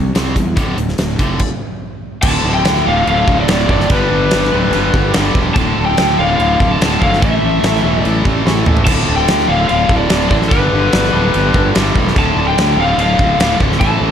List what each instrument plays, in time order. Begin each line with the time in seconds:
Already playing: fingered electric bass C2, distorted electric guitar C3 G3
0.15 fingered electric bass C2, distorted electric guitar C3 G3 C4, snare, closed hi-hat
0.35 fingered electric bass E2, distorted electric guitar C3 G3, kick, closed hi-hat
0.56 fingered electric bass D1, distorted electric guitar D2 A2 D3, kick, closed hi-hat
0.77 fingered electric bass D1, distorted electric guitar D2 A2, closed hi-hat
0.88 snare
0.98 fingered electric bass D1, distorted electric guitar D2 A2, snare, closed hi-hat
1.19 fingered electric bass F1, distorted electric guitar D2 A2 D3, kick, closed hi-hat
1.39 kick, crash
2.22 fingered electric bass D1, distorted electric guitar D2 A2 D3, lead electric guitar A5, kick, crash
2.45 fingered electric bass D1, distorted electric guitar D2 A2 D3
2.54 lead electric guitar G5
2.65 distorted electric guitar D2 A2 D3, fingered electric bass D2, snare, crash
2.76 snare
2.86 fingered electric bass D1, distorted electric guitar D2 A2 D3, lead electric guitar F5
3.06 fingered electric bass D1, distorted electric guitar D2 A2 D3, lead electric guitar F5, crash
3.28 fingered electric bass D1, distorted electric guitar D2 A2 D3, kick
3.40 lead electric guitar D5
3.48 fingered electric bass D1, distorted electric guitar D2 A2 D3, snare, crash
3.69 fingered electric bass F#1, distorted electric guitar D2 A2 D3, lead electric guitar D5, kick
3.80 snare
3.90 fingered electric bass G1, distorted electric guitar G2 D3 G3, lead electric guitar B4, kick, crash
4.11 fingered electric bass G1, distorted electric guitar G2 D3 G3
4.31 fingered electric bass G1, distorted electric guitar G2 D3 G3, snare, crash
4.43 snare
4.52 fingered electric bass D1, distorted electric guitar G2 D3 G3
4.73 fingered electric bass G1, distorted electric guitar G2 D3 G3, crash
4.93 fingered electric bass G1, distorted electric guitar G2 D3 G3, kick
5.14 fingered electric bass G1, distorted electric guitar G2 D3 G3, snare, crash
5.35 fingered electric bass E1, distorted electric guitar G2 D3 G3, kick
5.54 fingered electric bass D1, distorted electric guitar D2 A2 D3, lead electric guitar A5, kick, crash
5.77 fingered electric bass D1, distorted electric guitar D2 A2 D3
5.85 lead electric guitar G5
5.97 distorted electric guitar D2 A2 D3, fingered electric bass D2, snare, crash
6.19 fingered electric bass D1, distorted electric guitar D2 A2 D3, lead electric guitar F5
6.37 fingered electric bass D1, distorted electric guitar D2 A2 D3, lead electric guitar F5, crash
6.60 fingered electric bass D1, distorted electric guitar D2 A2 D3, kick
6.71 lead electric guitar A5
6.81 fingered electric bass D1, distorted electric guitar D2 A2 D3, snare, crash
7.01 fingered electric bass G1, distorted electric guitar D2 A2 D3, lead electric guitar F5, kick
7.13 snare
7.22 fingered electric bass A1, distorted electric guitar A2 E3 A3, lead electric guitar E5, kick, crash
7.42 fingered electric bass A1, distorted electric guitar A2 E3 A3
7.63 fingered electric bass A1, distorted electric guitar A2 E3 A3, snare, crash
7.75 snare
7.84 fingered electric bass E1, distorted electric guitar A2 E3 A3
8.04 fingered electric bass A1, distorted electric guitar A2 E3 A3, lead electric guitar D5, crash
8.25 fingered electric bass A1, distorted electric guitar A2 E3 A3, kick
8.46 fingered electric bass A1, distorted electric guitar A2 E3 A3, snare
8.66 fingered electric bass A1, distorted electric guitar A2 E3 A3, mid tom
8.77 floor tom
8.85 fingered electric bass D1, distorted electric guitar D2 A2 D3, lead electric guitar A5, kick, crash
9.08 fingered electric bass D1, distorted electric guitar D2 A2 D3
9.16 lead electric guitar G5
9.28 distorted electric guitar D2 A2 D3, fingered electric bass D2, snare, crash
9.39 snare
9.48 fingered electric bass D1, distorted electric guitar D2 A2 D3, lead electric guitar F5
9.67 fingered electric bass D1, distorted electric guitar D2 A2 D3, lead electric guitar F5, crash
9.89 fingered electric bass D1, distorted electric guitar D2 A2 D3, kick
9.97 lead electric guitar D5
10.10 fingered electric bass D1, distorted electric guitar D2 A2 D3, snare, crash
10.29 fingered electric bass A1, distorted electric guitar D2 A2 D3, lead electric guitar D5, kick
10.42 snare
10.49 fingered electric bass G1, distorted electric guitar G2 D3 G3, lead electric guitar B4, kick, crash
10.73 fingered electric bass G1, distorted electric guitar G2 D3 G3
10.93 fingered electric bass G1, distorted electric guitar G2 D3 G3, snare, crash
11.04 snare
11.14 fingered electric bass D1, distorted electric guitar G2 D3 G3
11.34 fingered electric bass G1, distorted electric guitar G2 D3 G3, crash
11.54 fingered electric bass G1, distorted electric guitar G2 D3 G3, kick
11.75 fingered electric bass G1, distorted electric guitar G2 D3 G3, snare, crash
11.95 fingered electric bass E1, distorted electric guitar G2 D3 G3, kick
12.08 snare
12.16 fingered electric bass D1, distorted electric guitar D2 A2 D3, lead electric guitar A5, kick, crash
12.37 fingered electric bass D1, distorted electric guitar D2 A2 D3
12.47 lead electric guitar G5
12.57 fingered electric bass D2, distorted electric guitar D2 A2 D3, snare, crash
12.77 fingered electric bass D1, distorted electric guitar D2 A2 D3, lead electric guitar F5
12.98 fingered electric bass D1, distorted electric guitar D2 A2 D3, lead electric guitar F5, crash
13.19 fingered electric bass D1, distorted electric guitar D2 A2 D3, kick
13.39 fingered electric bass D1, distorted electric guitar D2 A2 D3, snare, crash
13.60 fingered electric bass D1, distorted electric guitar D2 A2 D3, kick
13.72 snare
13.80 fingered electric bass A1, distorted electric guitar A2 E3 A3, lead electric guitar A5, kick, crash
14.01 fingered electric bass A1, distorted electric guitar A2 E3 A3